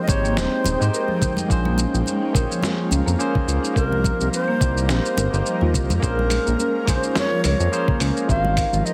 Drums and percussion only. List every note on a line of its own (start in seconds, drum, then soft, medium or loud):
0.08 kick loud
0.08 muted conga medium
0.08 low conga medium
0.08 shaker medium
0.25 shaker soft
0.37 snare medium
0.37 shaker soft
0.64 muted conga medium
0.64 high conga medium
0.64 shaker medium
0.82 shaker soft
0.94 shaker soft
1.08 high conga soft
1.22 kick medium
1.22 low conga medium
1.22 shaker medium
1.37 muted conga soft
1.37 high conga medium
1.37 shaker soft
1.50 kick loud
1.50 shaker medium
1.65 high conga medium
1.78 muted conga soft
1.78 shaker medium
1.95 shaker soft
2.06 high conga soft
2.06 shaker soft
2.35 kick loud
2.35 muted conga medium
2.35 low conga medium
2.35 shaker medium
2.52 shaker soft
2.62 snare medium
2.62 high conga medium
2.62 shaker soft
2.91 high conga medium
2.91 shaker medium
3.08 shaker soft
3.20 shaker soft
3.35 kick loud
3.35 low conga medium
3.48 shaker medium
3.64 shaker soft
3.76 kick loud
3.76 shaker medium
3.92 high conga medium
4.04 kick loud
4.04 muted conga soft
4.04 shaker medium
4.21 shaker soft
4.33 shaker soft
4.61 kick loud
4.61 muted conga soft
4.61 low conga medium
4.61 shaker medium
4.77 shaker soft
4.89 snare medium
4.89 shaker soft
5.05 shaker soft
5.17 muted conga medium
5.17 high conga medium
5.17 shaker medium
5.34 shaker soft
5.46 shaker soft
5.61 high conga soft
5.74 kick medium
5.74 low conga medium
5.74 shaker medium
5.90 muted conga soft
5.90 high conga medium
5.90 shaker soft
6.03 kick loud
6.03 shaker soft
6.19 high conga medium
6.30 open hi-hat medium
6.30 muted conga soft
6.30 shaker medium
6.47 shaker soft
6.59 high conga soft
6.59 shaker soft
6.87 kick loud
6.87 open hi-hat medium
6.87 muted conga medium
6.87 low conga medium
6.87 shaker medium
7.03 shaker soft
7.16 snare medium
7.16 high conga medium
7.16 shaker soft
7.44 open hi-hat medium
7.44 high conga medium
7.44 shaker medium
7.60 shaker soft
7.73 shaker soft
7.88 kick loud
7.88 low conga medium
8.00 open hi-hat medium
8.00 shaker medium
8.17 shaker soft
8.29 kick loud
8.29 shaker soft
8.45 high conga medium
8.57 kick loud
8.57 open hi-hat medium
8.57 muted conga soft
8.57 shaker medium
8.73 shaker soft
8.86 shaker soft